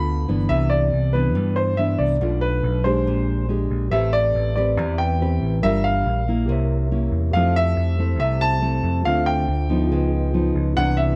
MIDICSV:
0, 0, Header, 1, 5, 480
1, 0, Start_track
1, 0, Tempo, 427655
1, 557, Time_signature, 4, 2, 24, 8
1, 12523, End_track
2, 0, Start_track
2, 0, Title_t, "Grand piano"
2, 0, Program_c, 0, 0
2, 0, Note_on_c, 0, 83, 108
2, 550, Note_on_c, 0, 76, 91
2, 577, Note_off_c, 0, 83, 0
2, 781, Note_on_c, 0, 74, 84
2, 801, Note_off_c, 0, 76, 0
2, 1268, Note_on_c, 0, 71, 83
2, 1284, Note_off_c, 0, 74, 0
2, 1750, Note_on_c, 0, 72, 82
2, 1766, Note_off_c, 0, 71, 0
2, 1976, Note_off_c, 0, 72, 0
2, 1989, Note_on_c, 0, 76, 86
2, 2228, Note_on_c, 0, 74, 75
2, 2240, Note_off_c, 0, 76, 0
2, 2708, Note_on_c, 0, 71, 87
2, 2727, Note_off_c, 0, 74, 0
2, 3158, Note_off_c, 0, 71, 0
2, 3190, Note_on_c, 0, 72, 84
2, 3868, Note_off_c, 0, 72, 0
2, 4394, Note_on_c, 0, 76, 91
2, 4635, Note_on_c, 0, 74, 93
2, 4642, Note_off_c, 0, 76, 0
2, 5082, Note_off_c, 0, 74, 0
2, 5113, Note_on_c, 0, 74, 79
2, 5593, Note_on_c, 0, 79, 89
2, 5609, Note_off_c, 0, 74, 0
2, 6270, Note_off_c, 0, 79, 0
2, 6320, Note_on_c, 0, 76, 98
2, 6555, Note_on_c, 0, 77, 99
2, 6565, Note_off_c, 0, 76, 0
2, 7231, Note_off_c, 0, 77, 0
2, 8231, Note_on_c, 0, 77, 96
2, 8457, Note_off_c, 0, 77, 0
2, 8488, Note_on_c, 0, 76, 101
2, 9158, Note_off_c, 0, 76, 0
2, 9200, Note_on_c, 0, 76, 91
2, 9441, Note_on_c, 0, 81, 101
2, 9446, Note_off_c, 0, 76, 0
2, 10115, Note_off_c, 0, 81, 0
2, 10162, Note_on_c, 0, 77, 99
2, 10396, Note_on_c, 0, 79, 95
2, 10407, Note_off_c, 0, 77, 0
2, 11793, Note_off_c, 0, 79, 0
2, 12085, Note_on_c, 0, 78, 97
2, 12312, Note_on_c, 0, 76, 84
2, 12329, Note_off_c, 0, 78, 0
2, 12523, Note_off_c, 0, 76, 0
2, 12523, End_track
3, 0, Start_track
3, 0, Title_t, "Tine electric piano"
3, 0, Program_c, 1, 4
3, 4360, Note_on_c, 1, 67, 45
3, 4381, Note_on_c, 1, 71, 40
3, 4424, Note_on_c, 1, 76, 52
3, 4602, Control_c, 1, 64, 127
3, 5553, Note_off_c, 1, 67, 0
3, 5564, Note_off_c, 1, 71, 0
3, 5575, Note_on_c, 1, 67, 33
3, 5586, Note_off_c, 1, 76, 0
3, 5586, Note_on_c, 1, 71, 31
3, 5610, Note_on_c, 1, 76, 41
3, 6305, Note_off_c, 1, 67, 0
3, 6307, Note_on_c, 1, 70, 44
3, 6311, Note_off_c, 1, 71, 0
3, 6323, Note_off_c, 1, 76, 0
3, 6327, Note_on_c, 1, 74, 41
3, 6329, Control_c, 1, 64, 0
3, 6356, Note_on_c, 1, 77, 54
3, 6558, Control_c, 1, 64, 127
3, 7247, Note_on_c, 1, 67, 57
3, 7252, Note_off_c, 1, 70, 0
3, 7262, Note_off_c, 1, 74, 0
3, 7271, Note_on_c, 1, 70, 52
3, 7277, Note_off_c, 1, 77, 0
3, 7290, Control_c, 1, 64, 0
3, 7296, Note_on_c, 1, 73, 50
3, 7318, Note_on_c, 1, 76, 65
3, 7479, Control_c, 1, 64, 127
3, 8197, Note_off_c, 1, 67, 0
3, 8210, Note_on_c, 1, 67, 46
3, 8215, Note_off_c, 1, 70, 0
3, 8227, Note_off_c, 1, 73, 0
3, 8231, Note_on_c, 1, 69, 43
3, 8239, Note_off_c, 1, 76, 0
3, 8252, Control_c, 1, 64, 0
3, 8254, Note_on_c, 1, 72, 43
3, 8275, Note_on_c, 1, 76, 47
3, 8444, Control_c, 1, 64, 127
3, 9400, Note_off_c, 1, 67, 0
3, 9410, Note_off_c, 1, 69, 0
3, 9416, Note_on_c, 1, 67, 37
3, 9422, Note_off_c, 1, 72, 0
3, 9428, Note_on_c, 1, 69, 32
3, 9433, Note_off_c, 1, 76, 0
3, 9444, Note_on_c, 1, 72, 32
3, 9450, Note_on_c, 1, 76, 38
3, 10122, Note_on_c, 1, 65, 46
3, 10132, Note_off_c, 1, 69, 0
3, 10146, Note_on_c, 1, 69, 42
3, 10147, Note_off_c, 1, 67, 0
3, 10156, Note_off_c, 1, 72, 0
3, 10164, Note_off_c, 1, 76, 0
3, 10170, Note_on_c, 1, 72, 42
3, 10175, Control_c, 1, 64, 0
3, 10189, Note_on_c, 1, 76, 48
3, 10384, Control_c, 1, 64, 127
3, 11070, Note_off_c, 1, 65, 0
3, 11083, Note_on_c, 1, 65, 59
3, 11093, Note_off_c, 1, 69, 0
3, 11102, Note_on_c, 1, 68, 53
3, 11105, Note_off_c, 1, 72, 0
3, 11115, Note_off_c, 1, 76, 0
3, 11128, Note_on_c, 1, 71, 50
3, 11133, Control_c, 1, 64, 0
3, 11150, Note_on_c, 1, 75, 63
3, 11312, Control_c, 1, 64, 127
3, 12042, Note_off_c, 1, 65, 0
3, 12051, Note_off_c, 1, 68, 0
3, 12052, Note_on_c, 1, 64, 45
3, 12064, Note_off_c, 1, 71, 0
3, 12075, Note_off_c, 1, 75, 0
3, 12075, Note_on_c, 1, 67, 39
3, 12094, Control_c, 1, 64, 0
3, 12095, Note_on_c, 1, 71, 42
3, 12120, Note_on_c, 1, 74, 51
3, 12314, Control_c, 1, 64, 127
3, 12523, Note_off_c, 1, 64, 0
3, 12523, Note_off_c, 1, 67, 0
3, 12523, Note_off_c, 1, 71, 0
3, 12523, Note_off_c, 1, 74, 0
3, 12523, End_track
4, 0, Start_track
4, 0, Title_t, "Nylon-string guitar"
4, 0, Program_c, 2, 24
4, 0, Note_on_c, 2, 50, 54
4, 0, Note_on_c, 2, 59, 57
4, 0, Note_on_c, 2, 65, 62
4, 0, Note_on_c, 2, 69, 71
4, 280, Note_off_c, 2, 59, 0
4, 284, Note_off_c, 2, 65, 0
4, 286, Note_off_c, 2, 69, 0
4, 318, Note_on_c, 2, 52, 55
4, 322, Note_on_c, 2, 59, 61
4, 328, Note_on_c, 2, 62, 67
4, 537, Note_off_c, 2, 50, 0
4, 557, Note_on_c, 2, 48, 54
4, 999, Note_off_c, 2, 52, 0
4, 1002, Note_off_c, 2, 59, 0
4, 1002, Note_off_c, 2, 62, 0
4, 1283, Note_on_c, 2, 52, 62
4, 1290, Note_on_c, 2, 59, 61
4, 1295, Note_on_c, 2, 62, 64
4, 1493, Note_off_c, 2, 48, 0
4, 1516, Note_on_c, 2, 43, 52
4, 1961, Note_off_c, 2, 52, 0
4, 1965, Note_off_c, 2, 59, 0
4, 1967, Note_off_c, 2, 62, 0
4, 2002, Note_on_c, 2, 52, 47
4, 2009, Note_on_c, 2, 59, 50
4, 2009, Note_on_c, 2, 62, 51
4, 2441, Note_off_c, 2, 52, 0
4, 2443, Note_off_c, 2, 59, 0
4, 2444, Note_off_c, 2, 62, 0
4, 2452, Note_off_c, 2, 43, 0
4, 2480, Note_on_c, 2, 47, 54
4, 2486, Note_on_c, 2, 57, 50
4, 2488, Note_on_c, 2, 62, 50
4, 2493, Note_on_c, 2, 65, 52
4, 3161, Note_off_c, 2, 57, 0
4, 3163, Note_off_c, 2, 62, 0
4, 3166, Note_off_c, 2, 65, 0
4, 3196, Note_on_c, 2, 56, 58
4, 3201, Note_on_c, 2, 62, 63
4, 3207, Note_on_c, 2, 67, 69
4, 3415, Note_off_c, 2, 47, 0
4, 3448, Note_on_c, 2, 46, 49
4, 3878, Note_off_c, 2, 56, 0
4, 3878, Note_off_c, 2, 62, 0
4, 3883, Note_off_c, 2, 67, 0
4, 3914, Note_on_c, 2, 56, 44
4, 3921, Note_on_c, 2, 62, 47
4, 3929, Note_on_c, 2, 67, 58
4, 4356, Note_off_c, 2, 56, 0
4, 4361, Note_off_c, 2, 62, 0
4, 4363, Note_off_c, 2, 67, 0
4, 4378, Note_off_c, 2, 46, 0
4, 4396, Note_on_c, 2, 57, 54
4, 4400, Note_on_c, 2, 60, 55
4, 4404, Note_on_c, 2, 67, 56
4, 4411, Note_on_c, 2, 71, 57
4, 5079, Note_off_c, 2, 60, 0
4, 5082, Note_off_c, 2, 67, 0
4, 5083, Note_off_c, 2, 71, 0
4, 5123, Note_on_c, 2, 60, 62
4, 5130, Note_on_c, 2, 67, 58
4, 5135, Note_on_c, 2, 71, 67
4, 5332, Note_off_c, 2, 57, 0
4, 5370, Note_on_c, 2, 52, 51
4, 5802, Note_off_c, 2, 60, 0
4, 5803, Note_off_c, 2, 67, 0
4, 5807, Note_off_c, 2, 71, 0
4, 5845, Note_on_c, 2, 60, 47
4, 5853, Note_on_c, 2, 67, 54
4, 5859, Note_on_c, 2, 71, 59
4, 6282, Note_off_c, 2, 60, 0
4, 6287, Note_off_c, 2, 67, 0
4, 6288, Note_off_c, 2, 71, 0
4, 6299, Note_off_c, 2, 52, 0
4, 6320, Note_on_c, 2, 55, 53
4, 6321, Note_on_c, 2, 62, 51
4, 6326, Note_on_c, 2, 65, 52
4, 6332, Note_on_c, 2, 70, 59
4, 6795, Note_off_c, 2, 62, 0
4, 6798, Note_off_c, 2, 65, 0
4, 6801, Note_off_c, 2, 70, 0
4, 7046, Note_off_c, 2, 55, 0
4, 7050, Note_on_c, 2, 58, 59
4, 7056, Note_on_c, 2, 64, 66
4, 7282, Note_on_c, 2, 48, 49
4, 7725, Note_off_c, 2, 58, 0
4, 7728, Note_off_c, 2, 64, 0
4, 7760, Note_on_c, 2, 58, 47
4, 7765, Note_on_c, 2, 61, 50
4, 7766, Note_on_c, 2, 64, 55
4, 8200, Note_off_c, 2, 58, 0
4, 8201, Note_off_c, 2, 61, 0
4, 8203, Note_off_c, 2, 64, 0
4, 8216, Note_off_c, 2, 48, 0
4, 8248, Note_on_c, 2, 53, 55
4, 8251, Note_on_c, 2, 57, 52
4, 8255, Note_on_c, 2, 60, 57
4, 8258, Note_on_c, 2, 64, 59
4, 8925, Note_off_c, 2, 57, 0
4, 8926, Note_off_c, 2, 60, 0
4, 8929, Note_off_c, 2, 64, 0
4, 8968, Note_on_c, 2, 57, 57
4, 8969, Note_on_c, 2, 60, 59
4, 8976, Note_on_c, 2, 64, 61
4, 9179, Note_off_c, 2, 53, 0
4, 9199, Note_on_c, 2, 48, 51
4, 9644, Note_off_c, 2, 57, 0
4, 9644, Note_off_c, 2, 60, 0
4, 9648, Note_off_c, 2, 64, 0
4, 9673, Note_on_c, 2, 57, 50
4, 9679, Note_on_c, 2, 60, 47
4, 9680, Note_on_c, 2, 64, 52
4, 10117, Note_off_c, 2, 57, 0
4, 10118, Note_off_c, 2, 60, 0
4, 10120, Note_off_c, 2, 64, 0
4, 10134, Note_off_c, 2, 48, 0
4, 10155, Note_on_c, 2, 50, 53
4, 10161, Note_on_c, 2, 57, 57
4, 10165, Note_on_c, 2, 60, 53
4, 10169, Note_on_c, 2, 65, 56
4, 10637, Note_off_c, 2, 57, 0
4, 10638, Note_off_c, 2, 60, 0
4, 10641, Note_off_c, 2, 65, 0
4, 10878, Note_on_c, 2, 53, 62
4, 10883, Note_on_c, 2, 59, 59
4, 10890, Note_on_c, 2, 63, 59
4, 11093, Note_off_c, 2, 50, 0
4, 11131, Note_on_c, 2, 49, 53
4, 11560, Note_off_c, 2, 53, 0
4, 11563, Note_off_c, 2, 59, 0
4, 11566, Note_off_c, 2, 63, 0
4, 11602, Note_on_c, 2, 53, 48
4, 11611, Note_on_c, 2, 59, 50
4, 11611, Note_on_c, 2, 63, 57
4, 12042, Note_off_c, 2, 53, 0
4, 12045, Note_off_c, 2, 59, 0
4, 12046, Note_off_c, 2, 63, 0
4, 12061, Note_off_c, 2, 49, 0
4, 12084, Note_on_c, 2, 52, 55
4, 12086, Note_on_c, 2, 48, 55
4, 12090, Note_on_c, 2, 59, 55
4, 12096, Note_on_c, 2, 62, 57
4, 12523, Note_off_c, 2, 48, 0
4, 12523, Note_off_c, 2, 52, 0
4, 12523, Note_off_c, 2, 59, 0
4, 12523, Note_off_c, 2, 62, 0
4, 12523, End_track
5, 0, Start_track
5, 0, Title_t, "Picked electric bass"
5, 0, Program_c, 3, 34
5, 0, Note_on_c, 3, 38, 80
5, 271, Note_off_c, 3, 38, 0
5, 321, Note_on_c, 3, 31, 79
5, 543, Note_off_c, 3, 31, 0
5, 560, Note_on_c, 3, 36, 90
5, 1005, Note_off_c, 3, 36, 0
5, 1042, Note_on_c, 3, 36, 83
5, 1518, Note_off_c, 3, 36, 0
5, 1518, Note_on_c, 3, 43, 77
5, 2192, Note_off_c, 3, 43, 0
5, 2237, Note_on_c, 3, 36, 73
5, 2460, Note_off_c, 3, 36, 0
5, 2476, Note_on_c, 3, 35, 91
5, 2923, Note_off_c, 3, 35, 0
5, 2956, Note_on_c, 3, 35, 87
5, 3441, Note_off_c, 3, 35, 0
5, 3441, Note_on_c, 3, 34, 79
5, 4113, Note_off_c, 3, 34, 0
5, 4158, Note_on_c, 3, 34, 75
5, 4380, Note_off_c, 3, 34, 0
5, 4396, Note_on_c, 3, 33, 88
5, 4842, Note_off_c, 3, 33, 0
5, 4883, Note_on_c, 3, 33, 82
5, 5357, Note_off_c, 3, 33, 0
5, 5357, Note_on_c, 3, 40, 82
5, 6031, Note_off_c, 3, 40, 0
5, 6079, Note_on_c, 3, 33, 76
5, 6301, Note_off_c, 3, 33, 0
5, 6319, Note_on_c, 3, 31, 93
5, 6764, Note_off_c, 3, 31, 0
5, 6797, Note_on_c, 3, 34, 87
5, 7271, Note_off_c, 3, 34, 0
5, 7271, Note_on_c, 3, 36, 84
5, 7949, Note_off_c, 3, 36, 0
5, 7987, Note_on_c, 3, 40, 74
5, 8214, Note_off_c, 3, 40, 0
5, 8230, Note_on_c, 3, 41, 96
5, 8680, Note_off_c, 3, 41, 0
5, 8718, Note_on_c, 3, 41, 84
5, 9200, Note_off_c, 3, 41, 0
5, 9200, Note_on_c, 3, 36, 81
5, 9874, Note_off_c, 3, 36, 0
5, 9916, Note_on_c, 3, 41, 76
5, 10140, Note_off_c, 3, 41, 0
5, 10161, Note_on_c, 3, 38, 96
5, 10606, Note_off_c, 3, 38, 0
5, 10639, Note_on_c, 3, 38, 86
5, 11123, Note_off_c, 3, 38, 0
5, 11123, Note_on_c, 3, 37, 82
5, 11796, Note_off_c, 3, 37, 0
5, 11844, Note_on_c, 3, 37, 76
5, 12065, Note_off_c, 3, 37, 0
5, 12089, Note_on_c, 3, 36, 89
5, 12523, Note_off_c, 3, 36, 0
5, 12523, End_track
0, 0, End_of_file